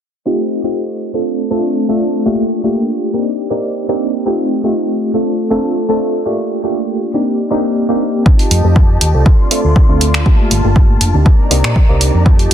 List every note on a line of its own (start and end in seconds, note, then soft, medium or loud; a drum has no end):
0.25 0.61 A3 medium
0.25 0.61 C4 medium
0.25 0.61 D#4 medium
0.25 0.61 F4 medium
0.25 0.61 G4 medium
0.63 1.11 A3 medium
0.63 1.11 C4 medium
0.63 1.11 D#4 medium
0.63 1.11 F4 medium
0.63 1.11 G4 medium
1.14 1.48 A3 medium
1.14 1.48 C4 medium
1.14 1.48 D4 medium
1.14 1.48 F4 medium
1.14 1.48 A4 medium
1.50 1.86 A3 medium
1.50 1.86 C4 medium
1.50 1.86 D4 medium
1.50 1.86 F4 medium
1.50 1.86 A4 medium
1.89 2.23 A3 medium
1.89 2.23 C4 medium
1.89 2.23 D4 medium
1.89 2.23 F4 medium
1.89 2.23 A4 medium
2.25 2.61 A3 medium
2.25 2.61 A#3 medium
2.25 2.61 D4 medium
2.25 2.61 F4 medium
2.25 2.61 G4 medium
2.64 3.11 A3 medium
2.64 3.11 A#3 medium
2.64 3.11 D4 medium
2.64 3.11 F4 medium
2.64 3.11 G4 medium
3.14 3.48 A#3 medium
3.14 3.48 C4 medium
3.14 3.48 D4 medium
3.14 3.48 D#4 medium
3.14 3.48 G4 medium
3.50 3.86 A#3 medium
3.50 3.86 C4 medium
3.50 3.86 D4 medium
3.50 3.86 D#4 medium
3.50 3.86 G4 medium
3.89 4.23 A#3 medium
3.89 4.23 C4 medium
3.89 4.23 D4 medium
3.89 4.23 D#4 medium
3.89 4.23 G4 medium
4.26 4.61 A3 medium
4.26 4.61 C4 medium
4.26 4.61 D#4 medium
4.26 4.61 F4 medium
4.26 4.61 G4 medium
4.64 5.11 A3 medium
4.64 5.11 C4 medium
4.64 5.11 D#4 medium
4.64 5.11 F4 medium
4.64 5.11 G4 medium
5.14 5.48 A3 medium
5.14 5.48 C4 medium
5.14 5.48 D4 medium
5.14 5.48 F4 medium
5.14 5.48 A4 medium
5.50 5.86 A3 medium
5.50 5.86 C4 medium
5.50 5.86 D4 medium
5.50 5.86 F4 medium
5.50 5.86 A4 medium
5.89 6.23 A3 medium
5.89 6.23 C4 medium
5.89 6.23 D4 medium
5.89 6.23 F4 medium
5.89 6.23 A4 medium
6.26 6.61 A3 medium
6.26 6.61 A#3 medium
6.26 6.61 D4 medium
6.26 6.61 F4 medium
6.26 6.61 G4 medium
6.64 7.11 A3 medium
6.64 7.11 A#3 medium
6.64 7.11 D4 medium
6.64 7.11 F4 medium
6.64 7.11 G4 medium
7.14 7.48 A#3 medium
7.14 7.48 C4 medium
7.14 7.48 D4 medium
7.14 7.48 D#4 medium
7.14 7.48 G4 medium
7.51 7.86 A#3 medium
7.51 7.86 C4 medium
7.51 7.86 D4 medium
7.51 7.86 D#4 medium
7.51 7.86 G4 medium
7.89 8.23 A#3 medium
7.89 8.23 C4 medium
7.89 8.23 D4 medium
7.89 8.23 D#4 medium
7.89 8.23 G4 medium
8.26 9.25 G4 medium
8.26 9.25 D#5 medium
8.26 9.25 A5 medium
8.26 kick loud
8.39 open hi-hat medium
8.51 8.62 F2 medium
8.51 open hi-hat medium
8.64 8.97 F2 medium
8.64 9.11 A3 medium
8.64 9.11 C4 medium
8.64 9.11 D#4 medium
8.64 9.11 F4 medium
8.64 9.11 G4 medium
8.76 kick loud
9.01 9.12 D#2 medium
9.01 open hi-hat loud
9.14 9.24 C2 medium
9.14 9.48 A3 medium
9.14 9.48 C4 medium
9.14 9.48 D4 medium
9.14 9.48 F4 medium
9.14 9.48 A4 medium
9.26 11.24 F4 medium
9.26 10.25 D5 medium
9.26 10.25 C6 medium
9.26 kick loud
9.51 9.86 A3 medium
9.51 9.86 C4 medium
9.51 9.86 D4 medium
9.51 9.86 F4 medium
9.51 9.86 A4 medium
9.51 open hi-hat loud
9.64 9.74 D2 medium
9.76 kick medium
9.89 10.22 D2 medium
9.89 10.23 A3 medium
9.89 10.23 C4 medium
9.89 10.23 D4 medium
9.89 10.23 F4 medium
9.89 10.23 A4 medium
10.01 open hi-hat loud
10.14 finger snap medium
10.26 10.61 A3 medium
10.26 10.61 A#3 medium
10.26 10.61 D4 medium
10.26 10.61 F4 medium
10.26 10.61 G4 medium
10.26 11.25 A5 medium
10.26 kick loud
10.39 muted fingered electric bass stroke soft
10.51 10.62 G1 medium
10.51 open hi-hat medium
10.64 10.97 G1 medium
10.64 11.11 A3 medium
10.64 11.11 A#3 medium
10.64 11.11 D4 medium
10.64 11.11 F4 medium
10.64 11.11 G4 medium
10.76 kick loud
11.01 11.12 F1 medium
11.01 open hi-hat medium
11.14 11.24 D2 loud
11.14 11.48 A#3 medium
11.14 11.48 C4 medium
11.14 11.48 D4 medium
11.14 11.48 D#4 medium
11.14 11.48 G4 medium
11.26 12.25 D#3 medium
11.26 12.25 D5 medium
11.26 12.25 A#5 medium
11.26 kick loud
11.39 muted fingered electric bass stroke soft
11.51 11.61 C2 medium
11.51 11.86 A#3 medium
11.51 11.86 C4 medium
11.51 11.86 D4 medium
11.51 11.86 D#4 medium
11.51 11.86 G4 medium
11.51 open hi-hat loud
11.64 11.74 A#2 medium
11.64 finger snap medium
11.76 kick loud
11.89 12.09 C2 medium
11.89 12.23 A#3 medium
11.89 12.23 C4 medium
11.89 12.23 D4 medium
11.89 12.23 D#4 medium
11.89 12.23 G4 medium
12.01 open hi-hat medium
12.14 12.47 F2 medium
12.25 12.54 A3 medium
12.25 12.54 C4 medium
12.25 12.54 D#4 medium
12.25 12.54 F4 medium
12.25 12.54 G4 medium
12.25 12.54 D#5 medium
12.25 12.54 A5 medium
12.25 kick loud
12.39 open hi-hat medium